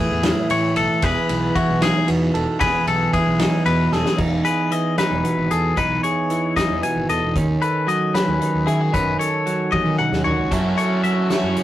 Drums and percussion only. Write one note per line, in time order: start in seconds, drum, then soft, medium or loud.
0.23 snare loud
0.23 ride loud
0.50 ride medium
0.76 ride medium
1.02 kick loud
1.02 ride loud
1.29 ride medium
1.56 kick medium
1.56 ride medium
1.82 snare loud
1.82 ride loud
2.08 ride medium
2.35 ride medium
2.61 kick loud
2.61 ride medium
2.87 ride medium
3.13 kick medium
3.13 ride medium
3.39 snare loud
3.39 ride medium
3.66 ride medium
3.92 snare medium
4.06 snare medium
4.18 kick medium
4.18 crash medium
4.46 closed hi-hat medium
4.72 closed hi-hat medium
4.98 snare loud
4.98 closed hi-hat medium
5.25 closed hi-hat medium
5.51 closed hi-hat medium
5.77 kick medium
5.77 closed hi-hat medium
6.04 closed hi-hat medium
6.30 closed hi-hat medium
6.57 kick medium
6.57 snare loud
6.57 closed hi-hat medium
6.83 closed hi-hat medium
7.09 closed hi-hat medium
7.36 kick medium
7.36 closed hi-hat medium
7.62 closed hi-hat medium
7.89 closed hi-hat medium
8.15 snare loud
8.15 closed hi-hat medium
8.42 closed hi-hat medium
8.68 closed hi-hat medium
8.94 kick loud
8.94 closed hi-hat medium
9.21 closed hi-hat medium
9.47 closed hi-hat medium
9.73 kick medium
9.73 high tom medium
9.99 mid tom medium
10.13 snare medium
10.25 floor tom medium
10.52 kick loud
10.52 closed hi-hat medium
10.52 crash medium
10.78 closed hi-hat medium
11.04 closed hi-hat medium
11.30 snare loud
11.30 closed hi-hat medium
11.56 closed hi-hat medium